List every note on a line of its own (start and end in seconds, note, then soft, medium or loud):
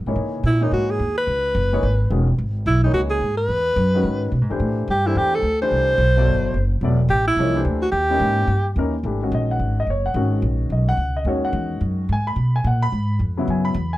0.06 0.15 G#2 medium
0.06 0.43 E3 medium
0.06 0.43 A#3 medium
0.06 0.43 D#4 medium
0.06 0.44 G#4 medium
0.06 0.43 C#5 medium
0.16 0.43 C#3 medium
0.43 0.71 A#2 medium
0.43 0.65 E4 medium
0.61 0.97 E3 medium
0.61 0.98 A#3 medium
0.61 0.98 D#4 medium
0.61 0.73 D#4 medium
0.61 0.98 G#4 medium
0.61 0.98 C#5 medium
0.72 0.99 G#2 medium
0.72 0.92 F#4 medium
0.91 1.17 G#4 medium
0.99 1.27 D#2 medium
1.18 2.24 B4 loud
1.27 1.54 C#2 medium
1.55 1.82 F#1 loud
1.73 1.82 E3 medium
1.73 1.82 A#3 medium
1.73 1.83 D#4 medium
1.73 1.83 G#4 medium
1.73 1.83 C#5 medium
1.83 2.10 G#1 medium
2.10 2.38 E1 medium
2.10 2.26 D#3 medium
2.10 2.26 G#3 medium
2.10 2.26 C#4 soft
2.10 2.27 F#4 medium
2.10 2.27 G#4 medium
2.38 2.65 G#1 medium
2.66 2.93 B1 medium
2.66 2.83 E4 medium
2.84 3.20 E3 medium
2.84 3.20 A#3 medium
2.84 2.93 D#4 medium
2.84 3.21 D#4 medium
2.84 3.21 G#4 medium
2.84 3.21 C#5 medium
2.93 3.20 C#2 medium
2.93 3.02 F#4 medium
3.10 3.36 G#4 medium
3.21 3.48 G#2 medium
3.37 4.45 B4 loud
3.48 3.76 E2 medium
3.76 4.03 F#2 medium
3.94 4.31 D#3 medium
3.94 4.31 G#3 medium
3.94 4.31 C#4 medium
3.94 4.31 F#4 medium
3.94 4.32 B4 medium
4.04 4.31 G#2 medium
4.32 4.41 B2 medium
4.41 4.50 G#2 medium
4.50 4.59 E2 medium
4.50 4.86 E3 medium
4.50 4.86 A3 medium
4.50 4.87 D4 medium
4.50 4.87 G4 medium
4.50 4.87 C5 medium
4.60 4.87 A2 medium
4.88 5.15 G2 medium
4.88 5.08 G4 medium
5.06 5.42 E3 medium
5.06 5.42 A3 medium
5.06 5.42 D4 medium
5.06 5.19 E4 medium
5.06 5.43 G4 medium
5.06 5.43 C5 medium
5.15 5.42 E2 medium
5.15 5.36 G4 medium
5.35 5.61 A4 medium
5.42 5.70 D2 medium
5.61 5.97 E3 medium
5.61 5.98 A3 medium
5.61 5.98 D4 medium
5.61 5.98 G4 medium
5.61 6.68 C5 loud
5.61 5.98 C5 medium
5.71 5.97 C2 medium
5.98 6.26 B1 medium
6.17 6.53 B2 medium
6.17 6.53 F#3 medium
6.17 6.53 E4 medium
6.17 6.53 A4 medium
6.17 6.54 D5 medium
6.26 6.53 G1 medium
6.54 6.80 F#1 medium
6.81 7.08 E1 medium
6.81 6.98 F#3 medium
6.81 6.98 B3 medium
6.81 6.98 E4 medium
6.81 6.99 A4 medium
6.81 6.99 D5 medium
7.09 7.36 A1 medium
7.09 7.26 G4 loud
7.28 7.63 E4 medium
7.36 7.64 C2 medium
7.36 7.54 F3 medium
7.36 7.54 A#3 medium
7.36 7.54 D#4 medium
7.36 7.54 G#4 medium
7.41 7.55 C#5 medium
7.55 7.79 E3 medium
7.55 7.80 A3 medium
7.55 7.80 D4 medium
7.55 7.80 G4 medium
7.55 7.80 C5 medium
7.65 7.92 D2 medium
7.82 7.91 F#4 medium
7.92 8.19 D#2 medium
7.92 8.72 G4 medium
8.10 8.46 E3 medium
8.10 8.47 A#3 medium
8.10 8.47 C#4 medium
8.10 8.47 D#4 medium
8.10 8.48 G4 medium
8.20 8.47 G#2 medium
8.47 8.75 G2 medium
8.76 9.03 D#2 medium
8.76 8.92 E3 medium
8.76 8.93 A#3 medium
8.76 8.93 C#4 soft
8.76 8.93 D#4 medium
8.76 8.93 A#4 medium
9.03 9.31 G#1 medium
9.03 9.20 E3 medium
9.03 9.20 A3 medium
9.03 9.20 D4 soft
9.03 9.21 G4 medium
9.22 9.81 D#3 medium
9.22 9.82 G#3 medium
9.22 9.82 C#4 medium
9.22 9.82 F#4 medium
9.32 9.59 A#1 medium
9.32 9.50 D#5 medium
9.51 9.76 F#5 medium
9.59 9.86 G#1 medium
9.80 9.89 D#5 medium
9.87 10.14 F#1 medium
9.87 10.05 C#5 medium
10.06 10.41 F#5 medium
10.14 10.42 G#1 medium
10.14 10.92 D#3 medium
10.14 10.92 G#3 medium
10.14 10.92 C#4 medium
10.14 10.92 F#4 medium
10.42 10.69 A#1 medium
10.70 10.97 B1 medium
10.70 10.88 D#5 medium
10.89 11.14 F#5 loud
10.97 11.24 C#2 medium
11.17 11.26 D#5 medium
11.25 11.52 D#2 medium
11.25 12.03 D#3 medium
11.25 12.03 G#3 medium
11.25 12.03 C#4 medium
11.25 12.03 F#4 medium
11.29 11.44 C#5 medium
11.45 11.80 F#5 medium
11.53 11.80 E2 medium
11.81 12.08 F#2 medium
12.09 12.35 G#2 medium
12.09 12.27 G#5 medium
12.27 12.52 B5 medium
12.36 12.63 B2 medium
12.56 12.65 G#5 medium
12.64 12.91 A#2 medium
12.64 12.82 F#5 medium
12.82 13.18 B5 loud
12.92 13.19 G#2 medium
13.19 13.46 F2 medium
13.37 13.73 C#3 medium
13.37 13.73 F#3 medium
13.37 13.73 B3 medium
13.37 13.74 E4 medium
13.47 13.74 F#2 medium
13.47 13.65 G#5 medium
13.65 13.90 B5 medium
13.74 13.98 E2 medium
13.93 13.98 G#5 medium